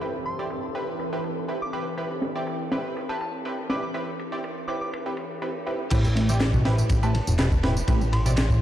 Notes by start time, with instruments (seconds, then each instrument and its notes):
Already playing: analog synth pad E3 C4 G4 A4, downlifter
0.01 synth stab C4 E4 G4 B4, ride
0.26 synth bell C6, ride
0.39 synth stab C4 E4 G4 D5
0.50 ride
0.74 synth stab C4 E4 G4 B4, ride
0.99 ride
1.12 synth stab C4 E4 G4 B4, ride
1.24 ride
1.48 synth stab C4 E4 G4 B4, ride
1.62 synth bell D6
1.73 synth stab C4 E4 G4 B4, synth bell D6, ride
1.97 synth stab C4 E4 G4 B4, ride
2.11 ride
2.22 snare, ride
2.36 synth stab C4 E4 G4 D5
2.47 ride
2.71 synth stab C4 E4 G4 B4, snare, ride
2.96 ride
3.09 synth stab C4 E4 G4 B4, synth bell A5
3.21 synth bell A5, ride
3.45 synth stab C4 E4 G4 B4, ride
3.69 synth stab C4 E4 G4 B4, synth bell D6, snare, ride
3.83 synth bell D6
3.94 synth stab C4 E4 G4 B4, ride
4.19 ride
4.32 synth stab C4 E4 G4 D5
4.44 ride
4.68 synth stab C4 E4 G4 B4, synth bell D6, ride
4.81 synth bell D6
4.93 ride
5.06 synth stab C4 E4 G4 B4, ride
5.17 ride
5.42 synth stab C4 E4 G4 B4, ride
5.67 synth stab C4 E4 G4 B4, ride
5.90 analog synth bass A1, acid bass A2, synth stab C4 E4 G4 B4, kick, crash, ride, tambourine
6.04 acid bass A1, ride, tambourine
6.15 acid bass A3, snare, ride
6.29 acid bass G2, synth stab C4 E4 G4 D5, tambourine
6.40 acid bass A2, snare, clap, ride, tambourine
6.53 acid bass B2, kick, tambourine
6.65 acid bass B2, synth stab C4 E4 G4 B4, snare, ride
6.78 acid bass A2, tambourine
6.89 acid bass A1, analog synth bass A1, kick, ride, tambourine
7.03 acid bass A3, synth stab C4 E4 G4 B4, synth bell A5, tambourine
7.14 acid bass G2, synth bell A5, ride
7.27 analog synth bass E1, acid bass A2, tambourine
7.39 acid bass B2, synth stab C4 E4 G4 B4, snare, clap, ride, tambourine
7.52 acid bass B2, kick, tambourine
7.63 acid bass A2, synth stab C4 E4 G4 B4, snare, ride
7.76 acid bass A1, tambourine
7.88 analog synth bass A1, acid bass A3, synth stab C4 E4 G4 B4, kick, ride, tambourine
8.01 acid bass G2, tambourine
8.12 acid bass A2, synth bell C6, ride
8.25 acid bass B2, synth stab C4 E4 G4 D5, tambourine
8.37 acid bass B2, snare, clap, ride, tambourine
8.50 acid bass A2, kick, tambourine